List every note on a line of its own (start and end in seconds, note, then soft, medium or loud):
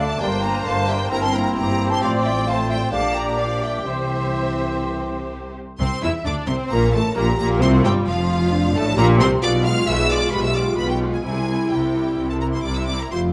0.00 0.15 D2 medium
0.00 0.15 D3 medium
0.00 0.20 A3 medium
0.00 0.21 A3 medium
0.00 0.18 D4 medium
0.00 1.13 D4 medium
0.00 0.20 A4 medium
0.00 0.20 D5 medium
0.00 0.20 A5 loud
0.19 0.60 G1 medium
0.19 0.60 G2 medium
0.19 0.31 G3 medium
0.19 1.12 A#3 medium
0.19 0.41 D4 medium
0.19 0.41 A#4 medium
0.19 1.09 C5 medium
0.19 0.27 D5 medium
0.19 0.43 G5 loud
0.42 0.65 A#3 medium
0.42 0.87 D4 medium
0.42 0.87 A#4 medium
0.42 0.64 G5 medium
0.42 0.66 A#5 loud
0.65 1.05 G1 medium
0.65 1.05 G2 medium
0.65 0.87 A3 medium
0.65 0.87 F5 medium
0.65 0.89 A5 loud
0.87 1.11 G3 medium
0.87 1.11 D4 medium
0.87 1.11 A#4 medium
0.87 0.93 E5 medium
0.87 1.12 G5 loud
1.10 1.51 G1 medium
1.10 1.51 G2 medium
1.10 1.22 A#3 medium
1.10 2.91 C4 medium
1.10 1.32 E4 medium
1.10 2.03 E4 medium
1.10 1.57 A#4 medium
1.10 1.33 C5 medium
1.10 1.23 G5 medium
1.10 1.22 A#5 loud
1.21 1.34 C4 medium
1.21 1.34 A5 medium
1.21 1.34 C6 loud
1.32 1.57 A#3 medium
1.32 1.78 E4 medium
1.32 1.79 C5 medium
1.32 1.53 G5 medium
1.32 1.55 A#5 medium
1.54 1.97 G1 medium
1.54 1.96 G2 medium
1.54 1.91 G5 medium
1.54 1.90 A#5 loud
1.58 1.91 A#3 medium
1.58 2.02 G4 medium
1.80 2.02 E4 medium
1.80 2.01 C5 medium
1.89 2.03 C4 medium
1.89 2.03 A5 medium
1.89 2.03 C6 medium
2.01 2.88 A1 medium
2.01 2.88 A2 medium
2.01 2.14 F3 medium
2.01 2.91 F4 medium
2.01 2.44 F4 medium
2.01 2.24 C5 medium
2.01 2.44 C5 medium
2.01 2.48 D5 medium
2.01 2.10 F5 loud
2.24 2.48 G3 medium
2.24 2.30 E5 medium
2.24 2.46 G5 medium
2.46 2.71 A3 medium
2.46 2.91 F4 medium
2.46 2.91 C5 medium
2.46 2.93 C5 medium
2.46 2.52 F5 medium
2.46 2.71 A5 loud
2.68 2.81 G3 medium
2.68 2.74 E5 medium
2.68 2.92 G5 medium
2.91 3.87 A#1 medium
2.91 3.87 A#2 medium
2.91 3.03 A3 medium
2.91 3.88 D4 medium
2.91 3.87 D4 medium
2.91 5.52 G4 medium
2.91 3.86 G4 medium
2.91 3.37 D5 medium
2.91 3.15 F5 medium
2.91 3.15 A5 loud
3.14 3.38 A#3 medium
3.14 3.36 G5 medium
3.14 3.38 A#5 medium
3.37 3.62 F3 medium
3.37 3.43 D5 medium
3.37 3.86 D5 medium
3.37 3.63 F5 medium
3.61 3.87 G3 medium
3.61 3.86 E5 medium
3.61 3.88 G5 medium
3.86 5.56 C2 medium
3.86 5.56 C3 medium
3.86 5.29 E3 medium
3.86 5.56 C4 medium
3.86 5.56 G4 medium
3.86 5.29 C5 medium
3.86 5.53 C5 medium
3.86 5.33 E5 medium
5.79 5.87 C2 loud
5.79 5.87 C3 medium
5.79 6.01 C4 medium
5.79 6.02 C5 medium
5.79 6.01 C6 loud
6.02 6.11 E2 medium
6.02 6.10 E3 medium
6.02 6.11 E4 medium
6.02 6.26 E5 medium
6.02 6.11 E6 medium
6.25 6.33 D2 medium
6.25 6.33 D3 medium
6.25 6.49 D4 medium
6.25 6.49 D5 medium
6.25 6.34 D6 medium
6.47 6.56 C2 medium
6.47 6.56 C3 medium
6.47 6.71 C4 medium
6.47 6.71 C5 medium
6.47 6.55 C6 medium
6.70 6.94 A#1 loud
6.70 6.94 A#2 medium
6.70 6.95 A#3 medium
6.70 6.94 A#4 loud
6.70 7.14 A#4 medium
6.70 6.93 A#5 loud
6.94 7.17 A1 medium
6.94 7.17 A2 medium
6.94 7.02 A3 medium
6.94 7.17 A4 medium
6.94 7.16 A5 loud
7.16 7.38 A#1 loud
7.16 7.37 A#2 loud
7.16 7.24 A#3 loud
7.16 7.61 G4 medium
7.16 7.38 A#4 medium
7.16 7.38 A#5 loud
7.38 7.61 A#1 loud
7.38 7.61 A#2 loud
7.38 7.62 A#3 medium
7.38 7.62 A#4 medium
7.38 7.47 A#5 loud
7.61 7.84 C2 loud
7.61 7.84 C3 loud
7.61 7.85 C4 loud
7.61 8.52 F4 medium
7.61 7.84 C5 medium
7.61 7.70 C6 loud
7.84 8.07 G1 loud
7.84 8.07 G2 loud
7.84 8.08 G3 loud
7.84 7.92 G4 medium
7.84 7.93 G5 loud
8.06 8.73 F1 medium
8.06 8.73 F2 medium
8.06 8.75 F3 medium
8.06 8.73 F4 medium
8.06 8.74 F5 loud
8.52 8.96 D4 medium
8.74 8.97 A1 loud
8.74 8.96 A2 loud
8.74 8.84 A3 loud
8.74 8.96 A4 medium
8.74 8.97 A5 loud
8.96 9.19 A#1 loud
8.96 9.18 A#2 loud
8.96 9.19 A#3 loud
8.96 9.42 G4 medium
8.96 9.05 A#4 medium
8.96 9.05 A#5 loud
9.18 9.42 C2 loud
9.18 9.42 C3 loud
9.18 9.28 C4 loud
9.18 9.28 C5 loud
9.18 9.28 C6 loud
9.41 9.81 B1 loud
9.41 9.81 B2 medium
9.41 9.86 F4 loud
9.41 9.64 D5 loud
9.41 9.51 D6 loud
9.65 10.09 G#3 medium
9.65 10.09 F4 medium
9.65 9.87 F5 loud
9.65 9.87 F6 loud
9.86 10.27 B1 medium
9.86 10.26 B2 medium
9.86 10.32 G#4 medium
9.86 10.10 E5 loud
9.86 10.10 E6 loud
10.10 10.54 G#3 medium
10.10 10.54 F4 medium
10.10 10.32 D5 loud
10.10 10.33 D6 loud
10.31 10.73 B1 medium
10.31 10.72 B2 medium
10.31 10.77 G4 medium
10.31 10.43 B4 medium
10.31 10.44 B5 loud
10.42 10.54 E5 medium
10.42 10.55 E6 loud
10.54 10.99 G#3 medium
10.54 10.99 F4 medium
10.54 10.62 D5 medium
10.54 10.78 D6 medium
10.77 11.19 B1 medium
10.77 11.19 B2 medium
10.77 11.23 F4 medium
10.77 10.89 B4 medium
10.77 10.89 B5 loud
10.89 11.13 G4 medium
10.89 10.97 G5 medium
11.00 11.24 G#3 medium
11.00 11.23 F4 medium
11.12 11.24 G#4 medium
11.12 11.22 G#5 medium
11.23 11.65 C2 medium
11.23 11.66 C3 medium
11.23 11.47 G3 medium
11.23 11.47 E4 medium
11.23 12.86 E4 medium
11.23 11.71 G#4 medium
11.23 11.70 G#5 medium
11.49 11.94 G3 medium
11.49 11.94 E4 medium
11.70 12.13 C2 medium
11.70 12.13 C3 medium
11.70 12.30 G4 medium
11.70 12.29 G5 medium
11.96 12.41 G3 medium
11.96 12.42 E4 medium
12.18 12.60 C2 medium
12.18 12.60 C3 medium
12.29 12.42 A4 medium
12.29 12.34 A5 medium
12.40 12.89 G3 medium
12.40 12.89 E4 medium
12.40 12.46 A#4 medium
12.40 12.45 A#5 medium
12.53 12.59 C5 medium
12.53 12.65 C6 medium
12.63 13.07 C2 medium
12.63 13.07 C3 medium
12.63 12.77 D5 medium
12.63 12.76 D6 medium
12.75 12.89 E5 medium
12.75 12.88 E6 medium
12.86 13.12 E4 medium
12.86 13.01 D5 medium
12.86 12.99 D6 medium
12.90 13.13 G3 medium
13.01 13.06 A#4 medium
13.01 13.12 A#5 medium
13.11 13.33 F1 medium
13.11 13.33 F2 medium
13.11 13.33 F4 medium
13.11 13.20 C5 medium
13.11 13.19 C6 loud